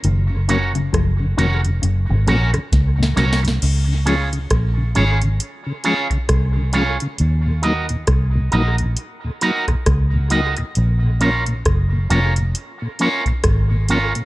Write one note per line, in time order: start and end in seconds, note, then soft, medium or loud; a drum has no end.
0.04 0.89 F#1 loud
0.04 0.24 D#3 medium
0.04 closed hi-hat medium
0.30 0.36 F#2 medium
0.30 0.36 C#3 medium
0.48 0.69 C#3 medium
0.48 0.58 F#3 medium
0.48 0.58 A#3 medium
0.48 0.71 C#4 medium
0.48 0.58 C#4 medium
0.48 0.71 F#4 medium
0.48 0.71 A#4 medium
0.48 0.71 C#5 medium
0.48 closed hi-hat medium
0.75 0.81 F#2 medium
0.75 0.89 C#3 medium
0.75 0.81 C#3 medium
0.75 closed hi-hat medium
0.93 1.36 F#1 medium
0.93 1.13 F3 medium
0.93 kick loud
0.93 cross-stick loud
0.93 closed hi-hat medium
1.20 1.26 F#2 medium
1.20 1.26 C#3 medium
1.37 1.80 F1 medium
1.37 1.58 D#3 medium
1.37 1.47 F#3 medium
1.37 1.47 A#3 medium
1.37 1.60 C#4 medium
1.37 1.47 C#4 medium
1.37 1.60 F#4 medium
1.37 1.60 A#4 medium
1.37 1.61 C#5 medium
1.37 closed hi-hat medium
1.65 1.71 F#2 medium
1.65 1.71 C#3 medium
1.65 closed hi-hat soft
1.82 2.08 F#1 medium
1.82 2.02 C#3 medium
1.82 closed hi-hat loud
2.09 2.27 G#1 medium
2.09 2.15 F#2 medium
2.09 2.15 C#3 medium
2.27 2.53 A#1 loud
2.27 2.47 G#2 medium
2.27 2.36 F#3 medium
2.27 2.36 A#3 medium
2.27 2.36 C#4 medium
2.27 2.50 C#4 medium
2.27 2.50 F#4 medium
2.27 2.50 A#4 medium
2.27 2.50 C#5 loud
2.27 cross-stick medium
2.27 closed hi-hat medium
2.53 2.60 F#2 medium
2.53 2.60 C#3 medium
2.53 muted clean electric guitar stroke soft
2.53 cross-stick medium
2.53 closed hi-hat medium
2.72 3.15 C#2 medium
2.72 kick loud
2.72 snare medium
2.72 closed hi-hat medium
2.98 3.05 F#2 medium
2.98 3.12 A#2 medium
2.98 3.05 C#3 medium
3.03 snare medium
3.16 3.59 C2 loud
3.16 3.37 A#2 medium
3.16 3.25 F#3 medium
3.16 3.26 A#3 medium
3.16 3.39 C#4 medium
3.16 3.26 C#4 medium
3.16 3.39 F#4 loud
3.16 3.39 A#4 medium
3.16 3.39 C#5 loud
3.16 snare medium
3.16 closed hi-hat medium
3.33 snare medium
3.43 3.50 F#2 medium
3.43 3.50 C#3 medium
3.43 muted clean electric guitar stroke soft
3.43 closed hi-hat medium
3.48 snare medium
3.62 4.47 C#2 loud
3.62 closed hi-hat medium
3.62 crash loud
3.88 3.94 C#3 medium
4.05 4.15 F3 medium
4.05 4.15 G#3 medium
4.05 4.28 C#4 medium
4.05 4.15 C#4 medium
4.05 4.28 F4 medium
4.05 4.28 G#4 medium
4.05 4.29 C#5 medium
4.05 closed hi-hat medium
4.33 4.39 C#3 medium
4.33 closed hi-hat soft
4.50 4.93 A#1 medium
4.50 kick loud
4.50 cross-stick loud
4.50 closed hi-hat medium
4.77 4.83 C#3 medium
4.95 5.39 G#1 medium
4.95 5.04 F3 medium
4.95 5.04 G#3 medium
4.95 5.18 C#4 medium
4.95 5.04 C#4 medium
4.95 5.18 F4 medium
4.95 5.18 G#4 loud
4.95 5.18 C#5 loud
4.95 closed hi-hat medium
5.22 5.28 C#3 medium
5.22 closed hi-hat soft
5.40 closed hi-hat loud
5.66 5.73 C#3 medium
5.84 5.94 F3 medium
5.84 5.94 G#3 medium
5.84 6.07 C#4 loud
5.84 5.94 C#4 medium
5.84 6.07 F4 loud
5.84 6.07 G#4 loud
5.84 6.07 C#5 loud
5.84 closed hi-hat medium
6.10 6.18 C#3 medium
6.10 muted clean electric guitar stroke soft
6.10 kick medium
6.10 closed hi-hat soft
6.29 6.97 C2 medium
6.29 kick loud
6.29 cross-stick loud
6.29 closed hi-hat loud
6.56 6.62 C#3 medium
6.73 6.83 F3 medium
6.73 6.83 G#3 medium
6.73 6.96 C#4 medium
6.73 6.84 C#4 medium
6.73 6.96 F4 loud
6.73 6.96 G#4 loud
6.73 6.96 C#5 loud
6.73 closed hi-hat medium
7.00 7.07 C#3 medium
7.00 closed hi-hat medium
7.18 8.05 D#2 medium
7.18 closed hi-hat medium
7.46 7.52 D#2 medium
7.46 7.52 A#2 medium
7.62 7.73 F#3 medium
7.62 7.73 A#3 medium
7.62 7.85 D#4 medium
7.62 7.73 D#4 medium
7.62 7.86 F#4 medium
7.62 7.85 A#4 medium
7.62 7.86 D#5 medium
7.62 closed hi-hat medium
7.89 7.96 D#2 medium
7.89 7.96 A#2 medium
7.89 closed hi-hat medium
8.07 8.51 C2 medium
8.07 kick loud
8.07 cross-stick loud
8.07 closed hi-hat medium
8.35 8.41 D#2 medium
8.35 8.41 A#2 medium
8.52 8.95 A#1 medium
8.52 8.62 F#3 medium
8.52 8.62 A#3 medium
8.52 8.74 D#4 medium
8.52 8.62 D#4 medium
8.52 8.75 F#4 medium
8.52 8.75 A#4 medium
8.52 8.75 D#5 loud
8.52 closed hi-hat medium
8.78 8.86 D#2 medium
8.78 8.86 A#2 medium
8.78 closed hi-hat medium
8.97 closed hi-hat loud
9.24 9.30 D#2 medium
9.24 9.30 A#2 medium
9.41 9.51 F#3 medium
9.41 9.51 A#3 medium
9.41 9.64 D#4 loud
9.41 9.51 D#4 medium
9.41 9.65 F#4 loud
9.41 9.65 A#4 loud
9.41 9.65 D#5 medium
9.41 closed hi-hat medium
9.68 9.75 D#2 medium
9.68 9.75 A#2 medium
9.68 muted clean electric guitar stroke soft
9.68 kick medium
9.68 cross-stick medium
9.68 closed hi-hat soft
9.86 10.54 C#2 medium
9.86 kick loud
9.86 cross-stick loud
9.86 closed hi-hat medium
10.13 10.20 D#2 medium
10.13 10.20 A#2 medium
10.30 10.40 F#3 medium
10.30 10.40 A#3 medium
10.30 10.53 D#4 medium
10.30 10.41 D#4 medium
10.30 10.54 F#4 medium
10.30 10.54 A#4 medium
10.30 10.54 D#5 medium
10.30 closed hi-hat medium
10.57 10.64 D#2 medium
10.57 10.64 A#2 medium
10.57 muted clean electric guitar stroke soft
10.57 closed hi-hat medium
10.75 11.62 A#1 medium
10.75 closed hi-hat medium
11.03 11.09 A#2 medium
11.20 11.30 F3 medium
11.20 11.30 A#3 medium
11.20 11.43 C#4 medium
11.20 11.30 C#4 medium
11.20 11.43 F4 medium
11.20 11.44 A#4 medium
11.20 11.44 C#5 medium
11.20 closed hi-hat medium
11.46 11.54 A#2 medium
11.46 closed hi-hat soft
11.65 12.08 F#1 medium
11.65 kick loud
11.65 cross-stick loud
11.65 closed hi-hat medium
11.93 11.99 A#2 medium
12.10 12.53 F1 medium
12.10 12.19 F3 medium
12.10 12.20 A#3 medium
12.10 12.32 C#4 medium
12.10 12.20 C#4 medium
12.10 12.33 F4 medium
12.10 12.33 A#4 medium
12.10 12.33 C#5 medium
12.10 closed hi-hat medium
12.36 12.44 A#2 medium
12.36 closed hi-hat medium
12.55 closed hi-hat loud
12.82 12.88 A#2 medium
12.99 13.09 F3 medium
12.99 13.09 A#3 medium
12.99 13.23 C#4 loud
12.99 13.09 C#4 medium
12.99 13.23 F4 medium
12.99 13.23 A#4 medium
12.99 13.23 C#5 loud
12.99 closed hi-hat medium
13.26 13.32 A#2 medium
13.26 kick medium
13.26 closed hi-hat soft
13.44 14.12 G#1 medium
13.44 kick loud
13.44 cross-stick loud
13.44 closed hi-hat loud
13.71 13.77 A#2 medium
13.89 13.98 F3 medium
13.89 13.99 A#3 medium
13.89 13.98 C#4 medium
13.89 14.12 C#4 medium
13.89 14.12 F4 medium
13.89 14.12 A#4 medium
13.89 14.12 C#5 loud
13.89 closed hi-hat medium
14.15 14.22 A#2 medium
14.15 closed hi-hat medium